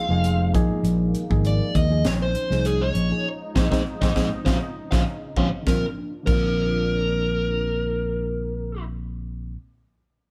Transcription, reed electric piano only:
0.09 F3 A#3 D#4 G#4
0.53 F3 A#3 D#4 G#4
1.29 F3 A#3 D#4 G#4
1.89 F3 A#3 D#4 G#4
2.50 F3 A#3 D#4 G#4
3.11 F3 A#3 D#4 G#4
3.55 G#3 C4 D#4
3.72 G#3 C4 D#4
4.02 G#3 C4 D#4
4.17 G#3 C4 D#4
4.47 C4 C#4 F4
4.92 C4 C#4 F4
5.37 C4 C#4 F4
5.63 D3 G3
5.69 C4 F4
6.23 D3 G3
6.28 C4 F4

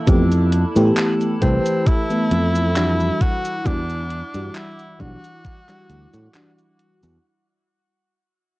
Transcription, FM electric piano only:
0.06 E3 A3 B3 G4
0.75 E3 A3 B3 G4
1.41 E3 A3 G4 B4
2.10 E3 A3 B3 A4
2.75 E3 G3 D4 F#4
3.65 E3 G3 D4 F#4
4.34 E3 G3 D4 F#4
4.99 E3 G3 D4 F#4
5.68 E3 G3 D4 F#4
6.33 E3 G3 D4 F#4

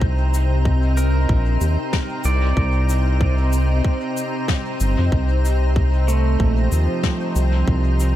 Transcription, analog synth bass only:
0.02 C2
1.29 A#1
1.61 D#2
2.25 C2
2.57 C2
4.80 G1
4.99 F2
5.12 C2
6.40 A#1
6.72 D#2
7.36 C2
7.68 C2

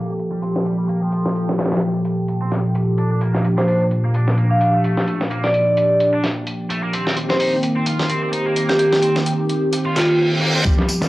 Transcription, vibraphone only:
3.58 C5
3.68 C5
4.51 F5
4.61 F5
5.43 D5
7.29 C5
7.39 C5
8.69 G4
8.79 G4
8.92 G4
9.96 F4
10.09 F4

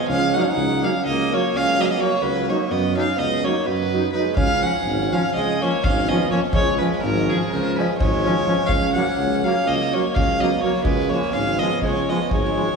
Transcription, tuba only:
0.09 C#2
0.56 C#2
1.05 C#2
1.54 C#2
2.22 C#2
2.71 F#2
3.19 C#2
3.68 F#2
4.36 C#2
4.85 G#1
5.35 C#2
5.85 G#1
6.53 C#2
7.03 G#1
7.52 C#2
8.01 G#1
8.69 C#2
9.18 C#2
9.67 C#2
10.15 C#2
10.84 C#2
11.34 G#1
11.83 C#2
12.32 G#1

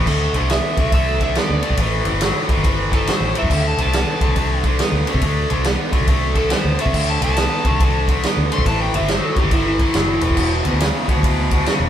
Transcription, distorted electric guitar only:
0.07 D3 A3
0.35 D3 A3
0.50 D3 B3
0.79 D3 A3
0.93 D3 A3
1.21 D3 A3
1.36 D3 B3
1.63 D3 A3
1.79 A2 E3
2.05 A2 E3
2.21 A2 F#3
2.49 A2 E3
2.64 A2 E3
2.92 A2 E3
3.08 A2 F#3
3.35 A2 E3
3.50 D3 A3
3.79 D3 A3
3.94 D3 B3
4.21 D3 A3
4.37 D3 A3
4.65 D3 A3
4.80 D3 B3
5.08 D3 A3
5.23 D3 A3
5.50 D3 A3
5.65 D3 B3
5.92 D3 A3
6.08 D3 A3
6.35 D3 A3
6.51 D3 B3
6.79 D3 A3
6.94 D3 A3
7.22 D3 A3
7.37 D3 B3
7.66 D3 A3
7.81 D3 A3
8.09 D3 A3
8.24 D3 B3
8.52 D3 A3
8.68 A2 E3
8.95 A2 E3
9.11 A2 F#3
9.39 A2 E3
9.53 A2 E3
9.81 A2 E3
9.95 A2 F#3
10.22 A2 E3
10.36 E2 B2
10.65 E2 B2
10.80 E2 C#3
11.08 E2 B2
11.24 E2 B2
11.51 E2 B2
11.66 E2 C#3

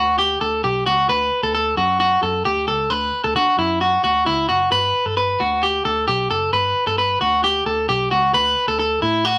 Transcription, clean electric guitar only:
Already playing: F#4
0.18 G4
0.41 A4
0.64 G4
0.86 F#4
1.09 B4
1.43 A4
1.55 A4
1.77 F#4
2.00 F#4
2.23 A4
2.45 G4
2.68 A4
2.90 B4
3.24 A4
3.36 F#4
3.59 E4
3.81 F#4
4.04 F#4
4.26 E4
4.49 F#4
4.72 B4
5.06 A4
5.17 B4
5.40 F#4
5.63 G4
5.85 A4
6.08 G4
6.31 A4
6.53 B4
6.87 A4
6.98 B4
7.21 F#4
7.44 G4
7.66 A4
7.89 G4
8.11 F#4
8.34 B4
8.68 A4
8.79 A4
9.02 E4
9.25 F#4

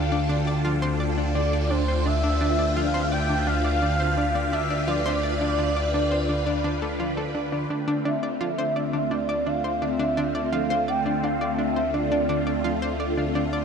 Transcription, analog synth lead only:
Already playing: F5
1.35 D5
1.63 D5
1.70 C5
2.05 E5
2.76 F5
3.11 G5
3.47 F5
4.53 E5
4.88 D5
8.06 E5
9.12 D5
9.47 F5
9.83 E5
10.53 F5
10.89 G5
11.24 F5
11.58 E5
11.94 D5

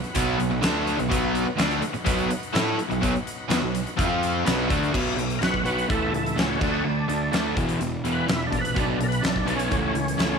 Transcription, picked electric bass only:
0.15 B1
0.40 B1
0.51 B1
0.63 D2
0.99 B1
1.11 B1
1.47 muted picked electric bass stroke
1.59 D2
1.83 muted picked electric bass stroke
1.96 muted picked electric bass stroke
2.07 B1
2.32 muted picked electric bass stroke
2.55 A2
2.79 muted picked electric bass stroke
2.91 B1
3.03 B1
3.50 E2
3.63 B1
3.99 F2
4.46 B1
4.70 D2
4.94 B1
5.17 B1
5.40 B1
5.63 B1
5.90 C#2
6.12 C#2
6.36 C#2
6.61 D2
6.85 D2
7.09 D2
7.33 D2
7.57 E1
7.81 E1
8.05 E1
8.28 E1
8.53 A#1
8.76 B1
8.99 B1
9.23 B1
9.46 B1
9.72 C#2
9.94 C#2
10.18 C#2

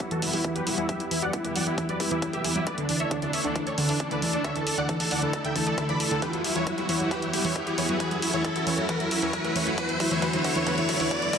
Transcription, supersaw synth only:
0.00 E4
0.11 F#4 A4
0.22 E4
0.33 E4
0.44 E4
0.56 G4 B4
0.67 E4
0.78 E4
0.89 G4 E5
1.00 E4
1.11 E4
1.22 D5 F#5
1.33 E4
1.44 E4
1.55 D5 F#5
1.67 E4
1.78 E4
1.89 B4 D5
2.00 E4
2.11 E4
2.22 E4
2.33 G4 E5
2.45 E4
2.56 E4
2.67 B4 D5
2.78 D4
2.89 D4
3.00 C#5 E5
3.11 D4
3.22 D4
3.33 C#5 E5
3.44 D4
3.55 D4
3.67 A4 C#5
3.78 D4
3.89 D4
4.00 D4
4.11 B4 D5
4.22 D4
4.34 D4
4.45 C#5 E5
4.56 A4
4.67 A4
4.78 D5 F#5
4.89 A4
5.00 A4
5.11 D5 F#5
5.22 A4
5.33 A4
5.45 E5 G5
5.56 A4
5.67 A4
5.78 A4
5.89 D5 B5
6.00 A4
6.11 A4
6.22 G4 B4
6.34 E4
6.45 E4
6.56 E4 C#5
6.67 E4
6.78 E4
6.89 E4 C#5
7.00 E4
7.11 G4 B4
7.22 E4
7.34 E4
7.45 E4 C#5
7.56 E4
7.67 E4
7.78 E4 C#5
7.89 E4
8.00 F#4 B4
8.11 E4
8.22 E4
8.34 E4 C#5
8.45 E4
8.56 E4
8.67 E4 C#5
8.78 E4
8.89 F#4 B4
9.00 E4
9.11 E4
9.22 E4 C#5
9.33 E4
9.45 E4
9.56 E4 C#5
9.67 E4
9.78 F#4 B4
9.89 E4
10.00 E4
10.11 E4 C#5
10.22 F#4 B4
10.34 E4
10.45 E4
10.56 E4 C#5
10.67 F#4 B4
10.78 E4
10.89 E4
11.00 E4 C#5
11.11 F#4 B4
11.22 E4
11.33 E4

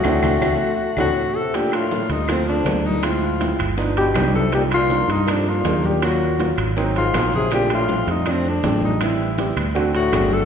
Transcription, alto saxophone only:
Already playing: F#4
0.99 F#4
1.36 A4
1.55 G4
1.75 F4
2.11 D#4
2.31 C4
2.49 D4
2.86 D#4
3.04 F4
3.98 G4
4.36 A4
4.54 G4
4.74 F4
5.11 D#4
5.31 D4
5.49 F4
5.86 G4
6.04 F#4
6.98 F4
7.35 G#4
7.55 G4
7.75 F4
8.11 D#4
8.31 C4
8.49 D4
8.85 D#4
9.03 E4
9.95 F#4
10.33 A4

